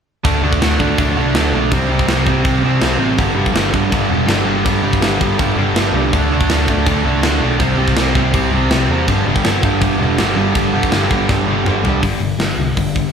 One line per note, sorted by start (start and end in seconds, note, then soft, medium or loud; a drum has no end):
0.24 0.41 D2 medium
0.24 0.42 D3 medium
0.24 0.42 A3 medium
0.24 0.43 D4 loud
0.24 kick loud
0.24 crash medium
0.41 0.58 D2 medium
0.41 0.61 D3 medium
0.41 0.61 A3 medium
0.41 0.61 D4 medium
0.53 kick medium
0.62 0.77 D2 medium
0.62 0.79 D3 loud
0.62 0.80 A3 loud
0.62 0.80 D4 medium
0.62 snare loud
0.62 crash medium
0.80 0.95 D2 medium
0.80 0.98 D3 medium
0.80 0.98 A3 medium
0.80 0.99 D4 medium
0.80 kick medium
0.98 1.14 D2 loud
0.98 1.16 D3 medium
0.98 1.16 A3 medium
0.98 1.17 D4 loud
0.98 kick loud
0.98 crash medium
1.17 1.32 C2 medium
1.17 1.34 D3 medium
1.17 1.35 A3 loud
1.17 1.35 D4 medium
1.34 1.50 D2 medium
1.34 1.53 D3 medium
1.34 1.53 A3 medium
1.34 1.53 D4 medium
1.34 snare loud
1.34 crash medium
1.52 1.68 B1 medium
1.52 1.71 D3 medium
1.52 1.71 A3 loud
1.52 1.71 D4 medium
1.71 1.87 C2 loud
1.71 1.88 C3 medium
1.71 1.89 G3 loud
1.71 1.89 C4 loud
1.71 kick loud
1.71 crash medium
1.89 2.06 C2 medium
1.89 2.06 C3 medium
1.89 2.07 G3 medium
1.89 2.07 C4 medium
1.99 kick medium
2.07 2.24 C2 medium
2.07 2.25 C3 medium
2.07 2.26 G3 loud
2.07 2.26 C4 loud
2.07 snare loud
2.07 crash medium
2.26 2.42 C2 medium
2.26 2.42 C3 medium
2.26 2.43 G3 loud
2.26 2.43 C4 medium
2.26 kick medium
2.43 2.61 C2 medium
2.43 2.61 C3 medium
2.43 2.63 G3 loud
2.43 2.62 C4 medium
2.43 kick loud
2.43 crash medium
2.62 2.79 C2 medium
2.62 2.80 C3 medium
2.62 2.81 G3 medium
2.62 2.81 C4 loud
2.81 2.97 C2 medium
2.81 2.97 C3 medium
2.81 2.99 G3 medium
2.81 2.98 C4 medium
2.81 snare loud
2.81 crash medium
2.98 3.15 A1 medium
2.98 3.17 C3 medium
2.98 3.17 G3 medium
2.98 3.17 C4 loud
3.16 3.34 G1 loud
3.16 3.34 G2 medium
3.16 3.34 D3 loud
3.16 3.35 G3 loud
3.16 kick loud
3.16 crash medium
3.34 3.52 G1 medium
3.34 3.52 G2 medium
3.34 3.52 D3 medium
3.34 3.53 G3 medium
3.46 kick medium
3.52 3.70 G1 medium
3.52 3.71 G2 medium
3.52 3.70 D3 loud
3.52 3.72 G3 loud
3.52 snare loud
3.52 crash medium
3.71 3.89 G1 medium
3.71 3.89 G2 medium
3.71 3.89 D3 medium
3.71 3.90 G3 loud
3.71 kick medium
3.90 4.07 G1 loud
3.90 4.07 G2 loud
3.90 4.07 D3 loud
3.90 4.08 G3 loud
3.90 kick loud
3.90 crash medium
4.08 4.25 E1 medium
4.08 4.25 G2 medium
4.08 4.25 D3 medium
4.08 4.25 G3 loud
4.26 4.44 G1 medium
4.26 4.43 G2 medium
4.26 4.44 D3 medium
4.26 4.44 G3 medium
4.26 snare loud
4.26 crash medium
4.30 4.47 D3 medium
4.30 4.48 G3 medium
4.45 4.62 G1 medium
4.45 4.63 G2 medium
4.45 4.64 D3 medium
4.45 4.64 G3 medium
4.64 4.81 G1 loud
4.64 4.81 G2 loud
4.64 4.82 D3 loud
4.64 4.82 G3 loud
4.64 kick loud
4.64 crash medium
4.82 4.99 G1 medium
4.82 5.00 G2 medium
4.82 5.00 D3 medium
4.82 5.00 G3 loud
4.93 kick medium
5.01 5.17 G1 medium
5.01 5.18 G2 loud
5.01 5.19 D3 loud
5.01 5.20 G3 loud
5.01 snare loud
5.01 crash medium
5.19 5.36 G1 medium
5.19 5.37 G2 medium
5.19 5.37 D3 medium
5.19 5.37 G3 loud
5.19 kick medium
5.38 5.54 G1 medium
5.38 5.55 G2 loud
5.38 5.55 D3 loud
5.38 5.56 G3 loud
5.38 kick loud
5.38 crash medium
5.56 5.72 G1 medium
5.56 5.74 G2 medium
5.56 5.75 D3 medium
5.56 5.75 G3 medium
5.75 5.91 G1 medium
5.75 5.93 G2 medium
5.75 5.94 D3 medium
5.75 5.94 G3 medium
5.75 snare loud
5.75 crash medium
5.93 6.09 C2 medium
5.93 6.11 G2 medium
5.93 6.11 D3 medium
5.93 6.12 G3 medium
6.13 6.29 D2 medium
6.13 6.30 D3 medium
6.13 6.30 A3 loud
6.13 6.31 D4 loud
6.13 kick loud
6.13 crash medium
6.29 6.46 D2 medium
6.29 6.48 D3 medium
6.29 6.49 A3 medium
6.29 6.49 D4 medium
6.41 kick medium
6.50 6.65 D2 loud
6.50 6.68 D3 medium
6.50 6.68 A3 loud
6.50 6.69 D4 loud
6.50 snare loud
6.50 crash medium
6.67 6.83 D2 medium
6.67 6.85 D3 medium
6.67 6.86 A3 medium
6.67 6.86 D4 medium
6.67 kick medium
6.86 7.02 D2 medium
6.86 7.05 D3 medium
6.86 7.05 A3 medium
6.86 7.05 D4 medium
6.86 kick loud
6.86 crash medium
7.04 7.20 C2 medium
7.04 7.22 D3 medium
7.04 7.22 A3 medium
7.04 7.23 D4 medium
7.22 7.38 D2 medium
7.22 7.41 D3 medium
7.22 7.41 A3 medium
7.22 7.41 D4 medium
7.22 snare loud
7.22 crash medium
7.40 7.56 B1 medium
7.40 7.59 D3 medium
7.40 7.59 A3 medium
7.40 7.59 D4 medium
7.59 7.75 C2 medium
7.59 7.78 C3 medium
7.59 7.79 G3 loud
7.59 7.79 C4 loud
7.59 kick loud
7.59 crash medium
7.76 7.92 C2 medium
7.76 7.96 C3 medium
7.80 7.97 G3 medium
7.80 7.97 C4 loud
7.88 kick medium
7.95 8.12 C2 medium
7.95 8.13 C3 loud
7.95 8.16 G3 loud
7.95 8.15 C4 loud
7.95 snare loud
7.95 crash medium
8.15 8.31 C2 loud
8.15 8.32 C3 medium
8.15 8.33 G3 medium
8.15 8.33 C4 loud
8.15 kick medium
8.33 8.49 C2 medium
8.33 8.50 C3 loud
8.33 8.51 G3 loud
8.33 8.51 C4 loud
8.33 kick loud
8.33 crash medium
8.51 8.67 C2 medium
8.51 8.69 C3 medium
8.51 8.70 G3 medium
8.51 8.70 C4 loud
8.70 8.86 C2 medium
8.70 8.88 C3 medium
8.70 8.89 G3 medium
8.70 8.89 C4 medium
8.70 snare loud
8.70 crash medium
8.89 9.05 E2 medium
8.89 9.06 C3 medium
8.89 9.08 G3 medium
8.89 9.07 C4 loud
9.07 9.23 G1 loud
9.07 9.26 G2 medium
9.07 9.26 D3 loud
9.07 9.27 G3 loud
9.07 kick loud
9.07 crash medium
9.26 9.42 G1 medium
9.26 9.45 G2 medium
9.26 9.45 D3 medium
9.26 9.46 G3 loud
9.36 kick medium
9.45 9.61 G1 medium
9.45 9.63 G2 medium
9.45 9.63 D3 loud
9.45 9.64 G3 loud
9.45 snare loud
9.45 crash medium
9.63 9.79 G1 medium
9.63 9.81 G2 medium
9.63 9.81 D3 loud
9.63 9.82 G3 medium
9.63 kick medium
9.81 9.97 G1 loud
9.81 9.99 G2 medium
9.81 9.99 D3 loud
9.81 10.01 G3 loud
9.81 kick loud
9.81 crash medium
10.00 10.16 E1 medium
10.00 10.17 G2 medium
10.00 10.17 D3 loud
10.00 10.18 G3 loud
10.17 10.34 G1 medium
10.17 10.35 G2 medium
10.17 10.35 D3 medium
10.17 10.36 G3 medium
10.17 snare loud
10.17 crash medium
10.35 10.52 G1 medium
10.35 10.53 G2 medium
10.35 10.53 D3 medium
10.35 10.54 G3 medium
10.54 10.70 G1 loud
10.54 10.71 G2 loud
10.54 10.72 D3 medium
10.54 10.72 G3 loud
10.54 kick loud
10.54 crash medium
10.72 10.89 G1 medium
10.72 10.90 G2 medium
10.72 10.91 D3 medium
10.72 10.91 G3 medium
10.83 kick medium
10.91 11.08 G1 medium
10.91 11.10 G2 loud
10.91 11.11 D3 loud
10.91 11.11 G3 loud
10.91 snare loud
10.91 crash medium
11.10 11.26 G1 medium
11.10 11.28 G2 medium
11.10 11.28 D3 medium
11.10 11.29 G3 loud
11.10 kick medium
11.29 11.45 G1 medium
11.29 11.46 G2 loud
11.29 11.46 D3 loud
11.29 11.47 G3 loud
11.29 kick loud
11.29 snare medium
11.47 11.63 G1 medium
11.47 11.65 G2 medium
11.47 11.65 D3 medium
11.47 11.66 G3 medium
11.65 11.81 G1 medium
11.65 11.83 G2 medium
11.65 11.83 D3 medium
11.65 11.83 G3 medium
11.65 mid tom medium
11.84 12.00 C2 medium
11.84 12.01 G2 medium
11.84 12.01 D3 medium
11.84 12.01 G3 medium
11.84 floor tom medium
12.02 12.15 G1 medium
12.02 12.19 G2 medium
12.02 12.19 D3 medium
12.02 12.20 G3 medium
12.02 kick loud
12.02 open hi-hat soft
12.20 12.33 G1 medium
12.20 12.37 G2 medium
12.20 12.37 D3 medium
12.37 12.51 G1 medium
12.37 12.56 G2 medium
12.37 12.56 D3 medium
12.37 snare loud
12.37 open hi-hat soft
12.57 12.70 C2 medium
12.57 12.75 G2 medium
12.57 12.75 D3 medium
12.77 13.02 G1 medium
12.77 12.93 G2 medium
12.77 12.93 D3 medium
12.77 kick loud
12.77 open hi-hat medium
12.95 13.12 G2 medium
12.95 13.12 D3 medium
12.95 kick medium